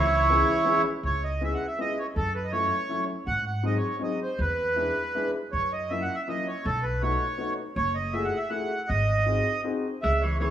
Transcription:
Already playing: C#2 E3 E4 C#5
0.30 G#3 B3 C#4 E4
0.65 G#3 B3 C#4 E4
1.03 C#2 C#5
1.24 D#5
1.41 G#3 B3 C#4 E4 E5
1.54 F#5
1.67 E5
1.79 G#3 B3 C#4 E4 D#5
1.99 C#5
2.16 F#2 A4
2.35 B4
2.44 D#5
2.52 F#3 A3 C#4 E4 C#5
2.89 F#3 A3 C#4 E4
3.27 G#2 F#5
3.46 F#5
3.63 F#3 G#3 C4 D#4 D#5
3.77 C#5
3.99 F#3 G#3 C4 D#4
4.04 D#5
4.22 C5
4.39 E2 B4
4.76 G#3 B3 D4 E4
5.14 G#3 B3 D4 E4
5.52 F#2 C#5
5.73 D#5
5.90 F#3 A#3 C#4 E4 E5
6.02 F#5
6.15 E5
6.27 F#3 A#3 C#4 E4 D#5
6.48 C#5
6.65 B1 A4
6.83 B4
7.02 A3 B3 D#4 F#4 C#5
7.38 A3 B3 D#4 F#4
7.76 F#1 C#5
7.95 D#5
8.13 A3 E4 F#4 G#4 E5
8.25 F#5
8.37 E5
8.50 A3 E4 F#4 G#4 F#5
8.88 G#1 D#5
9.26 C4 D#4 F#4 G#4
9.64 C4 D#4 F#4 G#4
10.02 C#2 G#3 E5
10.21 E3 C#5
10.39 E3 B3 C#4 E4 G#4 C#5

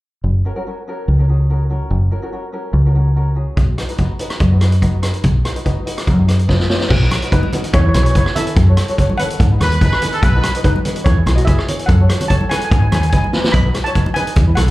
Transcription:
0.24 F#1
0.45 C#4 F#4 A#4
0.56 C#4 F#4 A#4
0.67 C#4 F#4 A#4
0.88 C#4 F#4 A#4
1.08 C#2
1.19 C#4 F#4 A#4
1.29 C#4 F#4 G#4
1.50 C#4 F#4 A#4
1.70 C#4 F#4 A#4
1.91 F#1
2.11 C#4 F#4 A#4
2.22 C#4 F#4 A#4
2.32 C#4 F#4 A#4
2.53 C#4 F#4 A#4
2.73 C#2
2.85 C#4 F#4 A#4
2.95 C#4 F#4 A#4
3.16 C#4 F#4 A#4
3.35 C#4 F#4 G#4
3.57 B1, kick, closed hi-hat
3.77 D#4 F#4 B4, cross-stick, closed hi-hat
3.89 D#4 F#4 B4, closed hi-hat
3.98 D#4 F#4 B4, kick, closed hi-hat
4.19 D#4 F#4 B4, closed hi-hat
4.30 cross-stick, closed hi-hat
4.40 F#2, kick, closed hi-hat
4.51 D#4 F#4 B4
4.61 D#4 F#4 B4, cross-stick, closed hi-hat
4.72 closed hi-hat
4.81 D#4 F#4 B4, kick, closed hi-hat
5.02 D#4 F#4 B4, cross-stick, closed hi-hat
5.14 closed hi-hat
5.23 B1, kick, closed hi-hat
5.44 D#4 F#4 B4, cross-stick, closed hi-hat
5.55 D#4 F#4 B4, closed hi-hat
5.64 D#4 F#4 B4, kick, closed hi-hat
5.85 D#4 F#4 B4, closed hi-hat
5.98 cross-stick, closed hi-hat
6.07 F#2, kick, closed hi-hat
6.17 D#4 F#4 G#4
6.27 D#4 F#4 B4, cross-stick, closed hi-hat
6.39 closed hi-hat
6.48 D#4 F#4 B4, kick, snare
6.60 snare
6.69 D#4 F#4 C#5, snare
6.80 snare
6.90 B1, kick, crash
7.02 D#4 F#4 B4
7.11 cross-stick, closed hi-hat, high conga
7.22 D#4 F#4 B4, closed hi-hat
7.32 D#4 F#4 B4, kick, closed hi-hat
7.43 high conga
7.53 D#4 F#4 B4, closed hi-hat, low conga
7.64 closed hi-hat
7.73 E2 E4 C#5, kick, closed hi-hat, high conga
7.81 C#5
7.85 E4 G#4 B4 C#5
7.94 B1 E4 G#4 B4 C#5, cross-stick, closed hi-hat, high conga
8.03 C#5, closed hi-hat
8.11 C#5
8.15 E4 G#4 B4 C#5, kick, closed hi-hat
8.26 cross-stick
8.36 E4 G#4 A4 B4 E5, closed hi-hat, low conga
8.47 closed hi-hat
8.56 F#2, kick, closed hi-hat
8.68 F#4 A4 C#5
8.77 cross-stick, closed hi-hat, high conga
8.88 F#4 A4 C#5, closed hi-hat
8.98 F#4 A4 C#5, kick, closed hi-hat
9.10 high conga
9.18 F#4 A4 B4 C#5 F#5, closed hi-hat, low conga
9.30 closed hi-hat
9.40 G#2, kick, closed hi-hat, high conga
9.51 D#4 G#4 B4
9.61 D#2 D#4 G#4 B4, cross-stick, closed hi-hat, high conga
9.72 closed hi-hat
9.81 D#4 G#4 B4, kick, closed hi-hat
9.93 cross-stick
10.02 D#4 G#4 B4, closed hi-hat, low conga
10.12 A4, closed hi-hat
10.22 B1 B4, kick, closed hi-hat
10.35 D#4 F#4 B4
10.43 cross-stick, closed hi-hat, high conga
10.55 D#4 F#4 B4, closed hi-hat
10.64 D#4 F#4 B4, kick, closed hi-hat
10.76 high conga
10.85 D#4 F#4 B4, closed hi-hat, low conga
10.96 closed hi-hat
11.04 E2 E4 C#5, kick, closed hi-hat, high conga
11.16 E4 G#4 B4
11.26 B1 E4 G#4 B4, cross-stick, closed hi-hat, high conga
11.36 F#4 D#5, closed hi-hat
11.45 E4 G#4 B4 E5, kick, closed hi-hat
11.59 cross-stick
11.67 E4 G#4 C#5, closed hi-hat, low conga
11.79 closed hi-hat
11.86 F#2 A4 F#5, kick, closed hi-hat
12.00 F#4 A4 C#5
12.09 cross-stick, closed hi-hat, high conga
12.20 F#4 A4 C#5, closed hi-hat, low conga
12.28 F#4 A4 C#5 A5, kick, closed hi-hat
12.41 high conga
12.49 F#4 A4 B4 G#5, cross-stick, closed hi-hat, low conga
12.58 G#5, closed hi-hat
12.65 G#5
12.71 G#2 G#5, kick, closed hi-hat, high conga
12.79 D#4 G#4 B4 G#5
12.87 G#5
12.92 D#2 D#4 G#4 B4 G#5, cross-stick, closed hi-hat, high conga
13.02 G#5, closed hi-hat
13.10 D#4 B4 G#5, kick, closed hi-hat
13.14 G#4 G#5, high conga
13.24 high conga
13.33 D#4 G#4 B4, snare, low conga
13.44 snare, low conga
13.52 B1 D#5 B5, kick, closed hi-hat
13.65 D#4 F#4 B4
13.74 cross-stick, closed hi-hat, high conga
13.84 D#4 F#4 B4 C#5 A5, closed hi-hat
13.94 D#4 F#4 B4, kick, closed hi-hat
14.06 high conga
14.14 D#4 F#4 G#4 B4 G#5, closed hi-hat, low conga
14.27 closed hi-hat
14.36 E2, kick, closed hi-hat, high conga
14.46 E4 G#4 B4
14.55 B1 E4 G#4 A4 B4 F#5, cross-stick, closed hi-hat, high conga

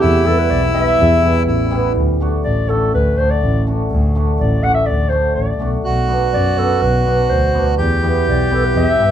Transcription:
Already playing: G4
0.01 E2 E4
0.24 G3 B3 E4 A4
0.38 B4
0.49 B1 D5
0.74 G3 B3 E4 E5
0.98 E2
1.23 G3 B3 E4
1.46 A1 E4
1.71 G3 B3 E4
1.96 D2
2.20 A3 D4 F#4
2.44 A1 D5
2.69 A3 D4 F#4 A4
2.93 D2 B4
3.18 A3 D4 F#4 C5
3.31 D5
3.42 A1
3.67 A3 D4 F#4
3.90 D2
4.15 A3 D4 F#4
4.39 A1 D5
4.63 A3 D4 F#4 F#5
4.74 E5
4.86 D2 D5
5.10 A3 D4 F#4 C5
5.35 A1 D5
5.59 B1 A3 D4 F#4
5.84 B1 F#4
6.08 B3 D4 F#4
6.34 F#2 D5
6.58 B3 D4 F#4 A4
6.82 B1 B4
7.05 B3 D4 F#4
7.29 D2 C5
7.54 B3 D4 F#4
7.78 E2 G4
8.02 B3 E4 G4
8.27 B1 D5
8.51 B3 E4 G4 A4
8.64 B4
8.75 E2 E5
8.99 G2 B3 E4 G4

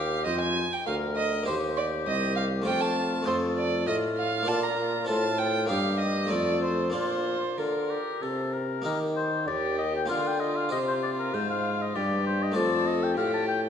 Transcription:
Already playing: D#2 A#3 G4 D#5 F5
0.25 F2 C5 D#5
0.40 G#5
0.73 G5
0.86 D2 A#4 F5
1.16 D#5
1.43 A#3 G4 C5
1.48 D#2
1.77 D5
2.06 C2 D#5
2.36 F5
2.62 A3 F4 C5
2.66 F2 F4 G5
2.81 A5
3.22 A3 F4 A4 D#5
3.27 F2 C5
3.57 D5
3.87 A2 F4 D#5
4.18 F5
4.43 A#3 F4 D5
4.48 A#2 A5
4.63 A#5
5.05 A2 C4 F4 A4 A5
5.09 A2
5.39 G5
5.66 G2 A#3 D#4 G4 A#4 F5
5.71 G2
5.99 D#5
6.26 A3 D#4 F4
6.31 F2 A4 D5
6.63 C5
6.90 A#3 D4 F4
6.94 A#2 F4 C5
7.58 D3 F4 A#4
7.90 G4
8.22 C3 A4
8.53 A#4
8.82 D#3 A#3 D#4 G4 A#4
8.86 D#3
9.17 C5
9.47 D#2 G4 D5
9.79 D#5
9.96 G5
10.06 A#3 F4 A#4 F5
10.10 D3 F4
10.28 G5
10.40 D#5
10.56 F5
10.69 C3 G4 C5 D#5
10.88 C5
11.03 D5
11.19 A#4
11.34 G#2 C5
11.50 F5
11.82 D#5
11.96 G2 G4 D5
12.27 C5
12.43 D#5
12.52 A3 F4 C5
12.56 F2 A4 D5
12.87 D#5
13.03 G5
13.17 A2 G4 F5
13.34 A5
13.48 G5

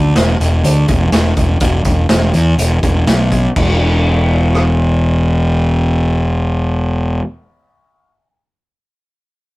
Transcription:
Already playing: D2
0.16 E1, snare, closed hi-hat
0.40 E1, closed hi-hat
0.63 D2, closed hi-hat
0.88 E1, kick, closed hi-hat
1.12 E1, snare, closed hi-hat
1.37 E1, kick, closed hi-hat
1.60 E1, kick, closed hi-hat
1.85 E1, kick, closed hi-hat
2.09 E1, snare, closed hi-hat
2.34 E2, closed hi-hat
2.58 E1, closed hi-hat
2.83 E1, kick, closed hi-hat
3.06 B1, snare, closed hi-hat
3.32 kick, closed hi-hat
3.56 E1, kick, crash
4.55 cross-stick

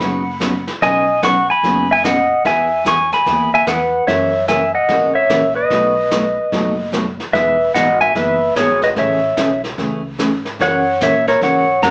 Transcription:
Already playing: F#5 B5
0.00 F#1 B2 C#3 F#3 B3 D#4 B4, brush sweep, kick, snare
0.40 B2 C#3 F#3 B3 D#4 B4, kick, snare, hi-hat pedal
0.67 snare
0.82 B1 B2 C#3 F#3 B3 D#4 B4 D#5 G#5, brush sweep, kick, snare
1.23 B2 C#3 F#3 B3 D#4 B4 F#5 C#6, kick, snare, hi-hat pedal
1.50 G#5 B5
1.63 F#1 B2 C#3 F#3 B3 D#4 B4, brush sweep, kick, snare
1.91 E5 G#5
2.04 B2 C#3 F#3 B3 D#4 B4 D#5 F#5, kick, snare, hi-hat pedal
2.45 E2 E3 B3 E4 G#4 E5 G#5, brush sweep, kick, snare
2.85 E3 B3 E4 G#4 G#5 C#6, kick, snare, hi-hat pedal
3.12 G#5 B5, snare
3.26 D#2 E3 B3 E4 G#4, brush sweep, kick, snare
3.54 E5 G#5
3.67 E2 E3 B3 E4 G#4 B4 F#5, kick, snare, hi-hat pedal
4.07 F#2 C#3 E3 A#3 C#4 F#4 C#5 E5, brush sweep, kick, snare
4.48 C#3 E3 A#3 C#4 F#4 E5 G#5, kick, snare, hi-hat pedal
4.75 D#5 F#5
4.88 G#1 C#3 E3 A#3 C#4 F#4, brush sweep, kick, snare
5.15 C#5 E5
5.29 A#1 C#3 E3 A#3 C#4 F#4, kick, snare, hi-hat pedal
5.55 B4 D#5
5.70 B1 B2 F#3 A3 D#4 F#4, brush sweep, kick, snare
6.11 B2 F#3 A3 D#4 F#4, kick, snare, hi-hat pedal
6.52 F#1 B2 F#3 A3 D#4 F#4, brush sweep, kick, snare
6.92 B2 F#3 A3 D#4 F#4, kick, snare, hi-hat pedal
7.20 snare
7.33 E1 E3 G#3 B3 D#4 G#4 B4 E5, brush sweep, kick, snare
7.74 G#1 E3 G#3 B3 D#4 G#4 D#5 F#5, kick, snare, hi-hat pedal
8.01 E5 G#5
8.15 F#1 E3 G#3 B3 D#4 G#4 B4 E5, brush sweep, kick, snare
8.56 G#1 E3 G#3 B3 D#4 G#4 C#5, kick, snare, hi-hat pedal
8.82 B4 D#5, snare
8.96 A1 C#3 E3 A3 C#4 G#4 C#5 E5, brush sweep, kick, snare
9.37 B1 C#3 E3 A3 C#4 G#4, kick, snare, hi-hat pedal
9.64 snare
9.78 C#2 C#3 E3 A3 C#4 G#4, brush sweep, kick, snare
10.18 G#2 C#3 E3 A3 C#4 G#4, kick, snare, hi-hat pedal
10.45 snare
10.59 F#2 C#3 E3 A#3 C#4 F#4 C#5 F#5, brush sweep, kick, snare
11.00 A#2 C#3 E3 A#3 C#4 F#4 C#5 E5, kick, snare, hi-hat pedal
11.27 A#4 C#5, snare
11.41 G#2 C#3 E3 A#3 C#4 F#4 C#5 F#5, brush sweep, kick, snare
11.82 F#2 C#3 E3 A#3 C#4 F#4 F#5 A#5, kick, snare, hi-hat pedal

